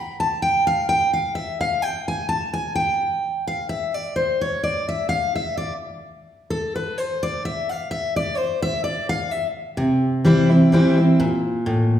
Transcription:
0.00 0.19 B5 loud
0.20 0.41 A5 loud
0.42 0.66 G5 medium
0.67 0.88 F5 loud
0.89 1.13 G5 loud
1.13 1.35 F5 medium
1.35 1.60 E5 medium
1.61 1.82 F5 loud
1.82 2.07 G5 loud
2.08 2.28 G#5 loud
2.29 2.53 A5 loud
2.53 2.75 G#5 loud
2.75 3.44 G5 loud
3.47 3.69 F5 medium
3.69 3.94 E5 medium
3.94 4.16 D5 loud
4.16 4.41 C5 medium
4.41 4.63 C#5 medium
4.63 4.88 D5 medium
4.89 5.08 E5 medium
5.09 5.34 F5 loud
5.36 5.56 E5 medium
5.57 5.72 D5 loud
6.50 6.75 A4 medium
6.76 6.98 B4 medium
6.98 7.22 C5 medium
7.23 7.44 D5 loud
7.45 7.69 E5 loud
7.69 7.90 F5 loud
7.91 8.15 E5 loud
8.16 8.37 D5 loud
8.37 8.62 C5 loud
8.62 8.83 E5 loud
8.84 9.09 D5 loud
9.09 9.31 F5 loud
9.31 9.46 E5 loud
9.77 10.67 C3 medium
10.25 10.49 E3 medium
10.25 10.50 G3 medium
10.25 10.50 C4 medium
10.25 10.48 E4 loud
10.49 10.72 C4 soft
10.49 10.71 E4 medium
10.72 10.96 E3 medium
10.72 10.97 G3 medium
10.72 10.97 C4 loud
10.72 10.96 E4 loud
10.97 11.19 C4 soft
10.97 11.18 E4 medium
11.20 12.00 A#2 loud
11.66 12.00 A2 medium

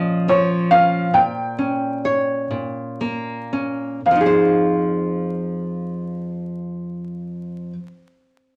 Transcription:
0.00 1.08 A#2 medium
0.00 0.27 F3 soft
0.00 0.70 C#4 soft
0.00 1.08 C#5 soft
0.00 0.25 D#5 medium
0.28 1.13 F3 soft
0.28 0.72 C#5 medium
0.71 1.08 C#4 soft
0.71 1.15 F5 medium
1.14 2.49 A#2 medium
1.14 2.96 G5 medium
1.58 3.51 C#4 soft
2.05 4.00 C#5 soft
2.51 3.99 A#2 soft
3.01 4.00 A#3 soft
3.53 4.00 C#4 soft
4.06 7.72 F2 soft
4.06 7.69 F5 soft
4.11 7.78 F3 soft
4.16 7.82 D#4 soft
4.21 7.87 G#4 soft
4.26 7.93 C5 soft

